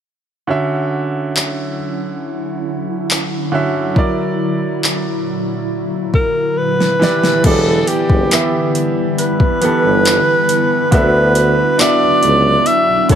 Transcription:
0.47 1.74 D3 medium
0.47 7.40 D3 medium
0.47 6.97 F#3 medium
0.47 3.93 C#4 medium
0.47 1.75 C#4 medium
0.47 7.40 E4 medium
0.47 1.75 F#4 medium
0.47 1.76 E5 medium
1.37 clap loud
3.11 clap loud
3.52 3.84 D3 medium
3.52 3.84 C#4 medium
3.52 3.85 F#4 medium
3.52 3.85 E5 medium
3.95 6.98 A#2 medium
3.95 5.22 F#3 medium
3.95 5.22 E4 medium
3.95 5.23 A#4 medium
3.95 5.24 D5 medium
3.95 kick loud
4.84 clap loud
6.14 6.59 A#4 medium
6.14 kick medium
6.58 7.47 B4 loud
6.80 snare medium
6.99 7.35 E3 medium
6.99 7.36 E4 medium
6.99 7.36 G4 medium
6.99 7.37 D5 medium
6.99 snare medium
7.23 snare medium
7.43 7.79 E1 loud
7.43 10.89 D3 medium
7.43 8.07 E3 medium
7.43 10.89 G3 medium
7.43 8.07 B3 medium
7.43 10.89 B3 medium
7.43 13.15 E4 medium
7.43 8.08 G4 medium
7.43 7.90 A4 loud
7.43 8.09 D5 medium
7.43 kick loud
7.43 closed hi-hat medium
7.43 crash loud
7.87 8.75 G4 medium
7.87 closed hi-hat medium
8.10 8.27 F#1 medium
8.10 kick medium
8.31 9.26 E3 medium
8.31 9.26 B3 medium
8.31 9.27 G4 medium
8.31 9.27 E5 medium
8.31 clap loud
8.31 closed hi-hat medium
8.75 closed hi-hat medium
9.18 10.88 B4 loud
9.18 closed hi-hat medium
9.40 kick medium
9.61 9.71 G1 soft
9.61 10.56 E3 medium
9.61 10.57 B3 medium
9.61 10.57 G4 medium
9.61 10.58 A4 medium
9.61 closed hi-hat medium
9.84 10.19 G1 medium
10.05 clap loud
10.05 closed hi-hat medium
10.49 closed hi-hat medium
10.91 11.62 D2 loud
10.91 11.55 D3 medium
10.91 13.15 F#3 medium
10.91 11.55 B3 medium
10.91 13.15 B3 medium
10.91 13.15 D4 medium
10.91 11.56 F#4 medium
10.91 11.81 B4 loud
10.91 11.57 E5 medium
10.91 kick loud
10.91 closed hi-hat medium
11.35 closed hi-hat medium
11.78 12.74 B3 medium
11.78 12.73 D4 medium
11.78 12.74 F#4 medium
11.78 12.68 D5 loud
11.78 12.75 E5 medium
11.78 clap loud
11.78 closed hi-hat medium
12.02 12.10 C#2 medium
12.23 12.58 C#2 loud
12.23 closed hi-hat medium
12.66 13.10 E5 loud
12.66 closed hi-hat medium
12.88 12.97 B1 soft
13.09 13.15 B1 medium
13.09 13.15 D3 medium
13.09 13.15 B3 medium
13.09 13.15 F#4 medium
13.09 13.15 A4 loud
13.09 13.15 C#5 medium
13.09 kick loud
13.09 closed hi-hat medium

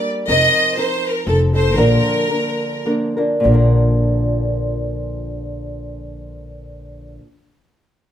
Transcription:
0.00 0.28 G3 medium
0.00 0.28 A#3 medium
0.00 0.28 D4 soft
0.00 0.28 A#4 medium
0.28 0.45 F1 medium
0.28 0.77 F3 medium
0.28 0.76 C4 medium
0.28 0.77 D#4 medium
0.28 0.77 A#4 medium
0.28 0.74 D#5 loud
0.77 1.27 F3 medium
0.77 1.26 C4 medium
0.77 1.27 D#4 medium
0.77 1.27 A#4 medium
0.77 1.10 C5 medium
1.10 1.26 A#4 medium
1.27 1.77 F1 loud
1.27 1.54 F3 soft
1.27 1.54 C4 soft
1.27 1.53 D#4 soft
1.27 1.40 A4 medium
1.27 1.52 A4 medium
1.53 1.77 C4 soft
1.53 1.77 D#4 soft
1.53 1.77 A4 soft
1.53 1.77 C5 medium
1.77 1.96 A#1 medium
1.77 2.30 A#2 medium
1.77 3.43 D3 medium
1.77 2.29 F3 medium
1.77 2.29 A#3 medium
1.77 2.30 D4 medium
1.77 2.86 A#4 medium
1.77 2.31 A#4 medium
2.29 2.85 F3 soft
2.29 2.85 A#3 medium
2.29 2.86 D4 medium
2.29 2.86 A#4 medium
2.85 3.17 F3 soft
2.85 3.17 A#3 medium
2.85 3.16 D4 medium
2.85 3.16 A#4 medium
3.17 3.45 F3 soft
3.17 3.45 A#3 medium
3.17 3.45 D4 soft
3.17 3.44 A#4 medium
3.40 7.16 A#2 medium
3.40 7.20 D3 medium
3.45 7.17 A#1 medium
3.45 7.22 F3 medium
3.49 7.25 A#3 medium
3.49 7.28 D4 medium
3.54 7.30 A#4 medium

